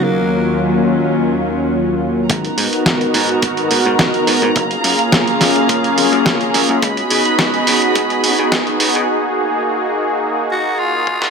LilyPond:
<<
  \new Staff \with { instrumentName = "String section" } { \time 4/4 \key gis \dorian \tempo 4 = 106 << { <dis fis>1 | ais''1~ | ais''1 | b''1 |
r1 | } \\ { <cis' eis'>1 | <b fis'>1 | <gis' eis''>1 | <fis' dis''>1 |
r1 | } >> }
  \new Staff \with { instrumentName = "Tenor saxophone" } { \time 4/4 \key gis \dorian ais4 r2. | r1 | r1 | r1 |
r2 r8 fis'8 eis'4 | }
  \new Staff \with { instrumentName = "Analog synth pad" } { \time 4/4 \key gis \dorian <dis, fis ais cis' eis'>1 | <b dis' fis' ais'>4. <b dis' fis' ais'>2~ <b dis' fis' ais'>8 | <ais cis' eis' gis'>4. <ais cis' eis' gis'>2~ <ais cis' eis' gis'>8 | <b dis' fis' gis'>4. r8 <b dis' fis' gis'>4. r8 |
<ais dis' fis' gis'>4 <ais dis' fis' gis'>4 r2 | }
  \new Staff \with { instrumentName = "Slap bass" } { \clef bass \time 4/4 \key gis \dorian r1 | gis,,16 r16 gis,16 r16 gis,,16 r16 gis,8 gis,,8 gis,16 gis,16 gis,,16 r16 gis,16 gis,16 | fis,,16 r16 fis,16 r16 fis,,16 r16 fis,8 fis,,8 fis,16 fis,16 fis,,16 r16 fis,16 fis,16 | cis,16 r16 cis16 r16 cis,16 r16 cis8 cis,8 cis16 cis16 cis,16 r16 cis16 cis16 |
r1 | }
  \new DrumStaff \with { instrumentName = "Drums" } \drummode { \time 4/4 r4 r4 r4 r4 | <hh bd>16 hh16 hho16 hh16 <hh bd sn>16 hh16 hho16 hh16 <hh bd>16 hh16 hho16 hh16 <hh bd sn>16 hh16 hho16 hh16 | <hh bd>16 hh16 hho16 hh16 <hh bd sn>16 hh16 <hho sn>16 hh16 <hh bd>16 hh16 hho16 hh16 <hh bd sn>16 hh16 hho16 hh16 | <hh bd>16 hh16 hho16 hh16 <hh bd sn>16 hh16 hho16 hh16 <hh bd>16 hh16 hho16 hh16 <hh bd sn>16 hh16 hho16 hh16 |
r4 r4 r4 r8 tommh16 sn16 | }
>>